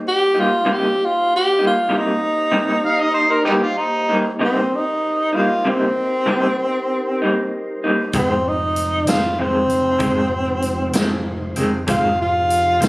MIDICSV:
0, 0, Header, 1, 7, 480
1, 0, Start_track
1, 0, Key_signature, -3, "minor"
1, 0, Tempo, 623053
1, 514, Time_signature, 12, 3, 24, 8
1, 9927, End_track
2, 0, Start_track
2, 0, Title_t, "Harmonica"
2, 0, Program_c, 0, 22
2, 2199, Note_on_c, 0, 77, 77
2, 2308, Note_on_c, 0, 75, 82
2, 2319, Note_off_c, 0, 77, 0
2, 2416, Note_off_c, 0, 75, 0
2, 2421, Note_on_c, 0, 72, 81
2, 2547, Note_on_c, 0, 70, 72
2, 2558, Note_off_c, 0, 72, 0
2, 2653, Note_off_c, 0, 70, 0
2, 2657, Note_on_c, 0, 59, 52
2, 2657, Note_on_c, 0, 63, 52
2, 2657, Note_on_c, 0, 67, 75
2, 2717, Note_off_c, 0, 63, 0
2, 2718, Note_off_c, 0, 59, 0
2, 2794, Note_on_c, 0, 65, 72
2, 2805, Note_off_c, 0, 67, 0
2, 2908, Note_on_c, 0, 63, 81
2, 2920, Note_off_c, 0, 65, 0
2, 3260, Note_off_c, 0, 63, 0
2, 9927, End_track
3, 0, Start_track
3, 0, Title_t, "Tonewheel organ"
3, 0, Program_c, 1, 16
3, 0, Note_on_c, 1, 58, 55
3, 0, Note_on_c, 1, 63, 58
3, 0, Note_on_c, 1, 67, 61
3, 0, Note_on_c, 1, 72, 55
3, 488, Note_off_c, 1, 58, 0
3, 490, Note_off_c, 1, 72, 0
3, 491, Note_off_c, 1, 63, 0
3, 491, Note_off_c, 1, 67, 0
3, 527, Note_on_c, 1, 63, 57
3, 527, Note_on_c, 1, 72, 60
3, 530, Note_on_c, 1, 58, 54
3, 530, Note_on_c, 1, 67, 57
3, 3370, Note_off_c, 1, 63, 0
3, 3370, Note_off_c, 1, 72, 0
3, 3372, Note_off_c, 1, 58, 0
3, 3372, Note_off_c, 1, 67, 0
3, 3383, Note_on_c, 1, 67, 60
3, 3388, Note_on_c, 1, 63, 58
3, 3393, Note_on_c, 1, 72, 59
3, 3394, Note_on_c, 1, 70, 62
3, 6237, Note_off_c, 1, 67, 0
3, 6240, Note_off_c, 1, 63, 0
3, 6243, Note_off_c, 1, 70, 0
3, 6243, Note_off_c, 1, 72, 0
3, 6266, Note_on_c, 1, 57, 50
3, 6271, Note_on_c, 1, 72, 52
3, 6273, Note_on_c, 1, 64, 54
3, 6273, Note_on_c, 1, 66, 51
3, 6508, Note_off_c, 1, 57, 0
3, 6508, Note_on_c, 1, 63, 58
3, 6511, Note_off_c, 1, 72, 0
3, 6512, Note_off_c, 1, 64, 0
3, 6512, Note_off_c, 1, 66, 0
3, 6513, Note_on_c, 1, 56, 58
3, 6518, Note_on_c, 1, 65, 57
3, 6520, Note_on_c, 1, 72, 62
3, 9123, Note_off_c, 1, 63, 0
3, 9125, Note_off_c, 1, 56, 0
3, 9128, Note_off_c, 1, 65, 0
3, 9129, Note_off_c, 1, 72, 0
3, 9149, Note_on_c, 1, 72, 58
3, 9154, Note_on_c, 1, 68, 58
3, 9157, Note_on_c, 1, 63, 57
3, 9159, Note_on_c, 1, 65, 60
3, 9927, Note_off_c, 1, 63, 0
3, 9927, Note_off_c, 1, 65, 0
3, 9927, Note_off_c, 1, 68, 0
3, 9927, Note_off_c, 1, 72, 0
3, 9927, End_track
4, 0, Start_track
4, 0, Title_t, "Tenor saxophone"
4, 0, Program_c, 2, 66
4, 61, Note_on_c, 2, 67, 90
4, 307, Note_on_c, 2, 65, 78
4, 318, Note_off_c, 2, 67, 0
4, 561, Note_on_c, 2, 67, 71
4, 573, Note_off_c, 2, 65, 0
4, 809, Note_on_c, 2, 65, 76
4, 820, Note_off_c, 2, 67, 0
4, 1015, Note_off_c, 2, 65, 0
4, 1049, Note_on_c, 2, 67, 85
4, 1255, Note_off_c, 2, 67, 0
4, 1287, Note_on_c, 2, 65, 80
4, 1524, Note_on_c, 2, 63, 85
4, 1536, Note_off_c, 2, 65, 0
4, 2907, Note_off_c, 2, 63, 0
4, 3422, Note_on_c, 2, 60, 82
4, 3663, Note_on_c, 2, 63, 81
4, 3675, Note_off_c, 2, 60, 0
4, 4126, Note_on_c, 2, 65, 70
4, 4138, Note_off_c, 2, 63, 0
4, 4375, Note_on_c, 2, 60, 77
4, 4387, Note_off_c, 2, 65, 0
4, 5772, Note_off_c, 2, 60, 0
4, 6298, Note_on_c, 2, 60, 85
4, 6533, Note_on_c, 2, 63, 75
4, 6544, Note_off_c, 2, 60, 0
4, 6988, Note_off_c, 2, 63, 0
4, 6997, Note_on_c, 2, 65, 86
4, 7240, Note_on_c, 2, 60, 94
4, 7252, Note_off_c, 2, 65, 0
4, 8645, Note_off_c, 2, 60, 0
4, 9166, Note_on_c, 2, 65, 84
4, 9392, Note_off_c, 2, 65, 0
4, 9412, Note_on_c, 2, 65, 80
4, 9927, Note_off_c, 2, 65, 0
4, 9927, End_track
5, 0, Start_track
5, 0, Title_t, "Clean electric guitar"
5, 0, Program_c, 3, 27
5, 266, Note_on_c, 3, 63, 53
5, 272, Note_on_c, 3, 58, 47
5, 281, Note_on_c, 3, 55, 44
5, 414, Note_off_c, 3, 63, 0
5, 417, Note_off_c, 3, 58, 0
5, 421, Note_off_c, 3, 55, 0
5, 501, Note_on_c, 3, 48, 70
5, 508, Note_on_c, 3, 58, 79
5, 510, Note_on_c, 3, 55, 74
5, 511, Note_on_c, 3, 63, 82
5, 652, Note_off_c, 3, 48, 0
5, 655, Note_off_c, 3, 58, 0
5, 656, Note_off_c, 3, 55, 0
5, 657, Note_off_c, 3, 63, 0
5, 1224, Note_on_c, 3, 63, 47
5, 1234, Note_on_c, 3, 58, 44
5, 1240, Note_on_c, 3, 55, 38
5, 1373, Note_off_c, 3, 63, 0
5, 1378, Note_off_c, 3, 58, 0
5, 1381, Note_off_c, 3, 55, 0
5, 1455, Note_on_c, 3, 48, 51
5, 1460, Note_on_c, 3, 55, 59
5, 1467, Note_on_c, 3, 58, 58
5, 1472, Note_on_c, 3, 63, 64
5, 1609, Note_off_c, 3, 48, 0
5, 1611, Note_off_c, 3, 55, 0
5, 1614, Note_off_c, 3, 58, 0
5, 1617, Note_off_c, 3, 63, 0
5, 1939, Note_on_c, 3, 48, 73
5, 1948, Note_on_c, 3, 55, 73
5, 1949, Note_on_c, 3, 58, 73
5, 1949, Note_on_c, 3, 63, 74
5, 2090, Note_off_c, 3, 48, 0
5, 2095, Note_off_c, 3, 55, 0
5, 2095, Note_off_c, 3, 58, 0
5, 2095, Note_off_c, 3, 63, 0
5, 2658, Note_on_c, 3, 63, 51
5, 2665, Note_on_c, 3, 58, 55
5, 2678, Note_on_c, 3, 55, 47
5, 2810, Note_off_c, 3, 63, 0
5, 2813, Note_off_c, 3, 58, 0
5, 2819, Note_off_c, 3, 55, 0
5, 3152, Note_on_c, 3, 63, 60
5, 3155, Note_on_c, 3, 58, 51
5, 3164, Note_on_c, 3, 55, 50
5, 3296, Note_off_c, 3, 63, 0
5, 3298, Note_off_c, 3, 58, 0
5, 3303, Note_off_c, 3, 55, 0
5, 3385, Note_on_c, 3, 48, 67
5, 3393, Note_on_c, 3, 55, 72
5, 3396, Note_on_c, 3, 58, 73
5, 3399, Note_on_c, 3, 63, 82
5, 3533, Note_off_c, 3, 48, 0
5, 3537, Note_off_c, 3, 55, 0
5, 3538, Note_off_c, 3, 58, 0
5, 3540, Note_off_c, 3, 63, 0
5, 4104, Note_on_c, 3, 63, 46
5, 4114, Note_on_c, 3, 58, 43
5, 4121, Note_on_c, 3, 55, 39
5, 4252, Note_off_c, 3, 63, 0
5, 4257, Note_off_c, 3, 58, 0
5, 4261, Note_off_c, 3, 55, 0
5, 4350, Note_on_c, 3, 48, 55
5, 4355, Note_on_c, 3, 55, 50
5, 4364, Note_on_c, 3, 58, 56
5, 4367, Note_on_c, 3, 63, 60
5, 4495, Note_off_c, 3, 48, 0
5, 4498, Note_off_c, 3, 55, 0
5, 4502, Note_off_c, 3, 58, 0
5, 4504, Note_off_c, 3, 63, 0
5, 4823, Note_on_c, 3, 48, 70
5, 4830, Note_on_c, 3, 55, 76
5, 4831, Note_on_c, 3, 58, 68
5, 4835, Note_on_c, 3, 63, 77
5, 4972, Note_off_c, 3, 48, 0
5, 4975, Note_off_c, 3, 55, 0
5, 4975, Note_off_c, 3, 58, 0
5, 4977, Note_off_c, 3, 63, 0
5, 5562, Note_on_c, 3, 63, 54
5, 5572, Note_on_c, 3, 58, 46
5, 5576, Note_on_c, 3, 55, 43
5, 5701, Note_off_c, 3, 63, 0
5, 5706, Note_off_c, 3, 58, 0
5, 5708, Note_off_c, 3, 55, 0
5, 6039, Note_on_c, 3, 63, 54
5, 6047, Note_on_c, 3, 58, 46
5, 6059, Note_on_c, 3, 55, 41
5, 6179, Note_off_c, 3, 63, 0
5, 6183, Note_off_c, 3, 58, 0
5, 6189, Note_off_c, 3, 55, 0
5, 6270, Note_on_c, 3, 41, 63
5, 6275, Note_on_c, 3, 51, 70
5, 6277, Note_on_c, 3, 60, 73
5, 6279, Note_on_c, 3, 56, 72
5, 6415, Note_off_c, 3, 41, 0
5, 6417, Note_off_c, 3, 51, 0
5, 6418, Note_off_c, 3, 60, 0
5, 6419, Note_off_c, 3, 56, 0
5, 6992, Note_on_c, 3, 60, 45
5, 7003, Note_on_c, 3, 56, 38
5, 7009, Note_on_c, 3, 51, 38
5, 7135, Note_off_c, 3, 60, 0
5, 7141, Note_off_c, 3, 56, 0
5, 7144, Note_off_c, 3, 51, 0
5, 7233, Note_on_c, 3, 41, 50
5, 7246, Note_on_c, 3, 51, 50
5, 7247, Note_on_c, 3, 56, 52
5, 7251, Note_on_c, 3, 60, 57
5, 7376, Note_off_c, 3, 41, 0
5, 7382, Note_off_c, 3, 51, 0
5, 7383, Note_off_c, 3, 56, 0
5, 7385, Note_off_c, 3, 60, 0
5, 7696, Note_on_c, 3, 41, 64
5, 7698, Note_on_c, 3, 51, 74
5, 7704, Note_on_c, 3, 56, 76
5, 7709, Note_on_c, 3, 60, 72
5, 7847, Note_off_c, 3, 41, 0
5, 7848, Note_off_c, 3, 51, 0
5, 7851, Note_off_c, 3, 56, 0
5, 7854, Note_off_c, 3, 60, 0
5, 8426, Note_on_c, 3, 60, 55
5, 8445, Note_on_c, 3, 56, 51
5, 8453, Note_on_c, 3, 51, 43
5, 8572, Note_off_c, 3, 60, 0
5, 8582, Note_off_c, 3, 56, 0
5, 8586, Note_off_c, 3, 51, 0
5, 8909, Note_on_c, 3, 60, 54
5, 8918, Note_on_c, 3, 56, 55
5, 8927, Note_on_c, 3, 51, 45
5, 9054, Note_off_c, 3, 60, 0
5, 9059, Note_off_c, 3, 56, 0
5, 9063, Note_off_c, 3, 51, 0
5, 9145, Note_on_c, 3, 41, 64
5, 9154, Note_on_c, 3, 51, 72
5, 9157, Note_on_c, 3, 56, 74
5, 9158, Note_on_c, 3, 60, 73
5, 9292, Note_off_c, 3, 41, 0
5, 9296, Note_off_c, 3, 51, 0
5, 9298, Note_off_c, 3, 56, 0
5, 9298, Note_off_c, 3, 60, 0
5, 9866, Note_on_c, 3, 60, 50
5, 9868, Note_on_c, 3, 56, 39
5, 9883, Note_on_c, 3, 51, 34
5, 9927, Note_off_c, 3, 51, 0
5, 9927, Note_off_c, 3, 56, 0
5, 9927, Note_off_c, 3, 60, 0
5, 9927, End_track
6, 0, Start_track
6, 0, Title_t, "Fretless electric bass"
6, 0, Program_c, 4, 35
6, 6269, Note_on_c, 4, 29, 82
6, 6959, Note_off_c, 4, 29, 0
6, 6999, Note_on_c, 4, 29, 81
6, 7444, Note_off_c, 4, 29, 0
6, 7474, Note_on_c, 4, 29, 69
6, 7693, Note_off_c, 4, 29, 0
6, 7707, Note_on_c, 4, 29, 95
6, 8398, Note_off_c, 4, 29, 0
6, 8436, Note_on_c, 4, 29, 74
6, 8882, Note_off_c, 4, 29, 0
6, 8921, Note_on_c, 4, 29, 86
6, 9137, Note_off_c, 4, 29, 0
6, 9156, Note_on_c, 4, 29, 85
6, 9843, Note_off_c, 4, 29, 0
6, 9881, Note_on_c, 4, 29, 82
6, 9927, Note_off_c, 4, 29, 0
6, 9927, End_track
7, 0, Start_track
7, 0, Title_t, "Drums"
7, 6264, Note_on_c, 9, 42, 69
7, 6268, Note_on_c, 9, 36, 88
7, 6341, Note_off_c, 9, 42, 0
7, 6345, Note_off_c, 9, 36, 0
7, 6749, Note_on_c, 9, 42, 56
7, 6826, Note_off_c, 9, 42, 0
7, 6987, Note_on_c, 9, 42, 78
7, 7004, Note_on_c, 9, 38, 103
7, 7064, Note_off_c, 9, 42, 0
7, 7081, Note_off_c, 9, 38, 0
7, 7469, Note_on_c, 9, 42, 51
7, 7546, Note_off_c, 9, 42, 0
7, 7702, Note_on_c, 9, 42, 71
7, 7707, Note_on_c, 9, 36, 89
7, 7779, Note_off_c, 9, 42, 0
7, 7784, Note_off_c, 9, 36, 0
7, 8184, Note_on_c, 9, 42, 54
7, 8261, Note_off_c, 9, 42, 0
7, 8423, Note_on_c, 9, 42, 78
7, 8440, Note_on_c, 9, 38, 101
7, 8500, Note_off_c, 9, 42, 0
7, 8517, Note_off_c, 9, 38, 0
7, 8904, Note_on_c, 9, 42, 56
7, 8981, Note_off_c, 9, 42, 0
7, 9148, Note_on_c, 9, 42, 77
7, 9153, Note_on_c, 9, 36, 85
7, 9225, Note_off_c, 9, 42, 0
7, 9230, Note_off_c, 9, 36, 0
7, 9632, Note_on_c, 9, 42, 60
7, 9709, Note_off_c, 9, 42, 0
7, 9873, Note_on_c, 9, 42, 78
7, 9890, Note_on_c, 9, 38, 107
7, 9927, Note_off_c, 9, 38, 0
7, 9927, Note_off_c, 9, 42, 0
7, 9927, End_track
0, 0, End_of_file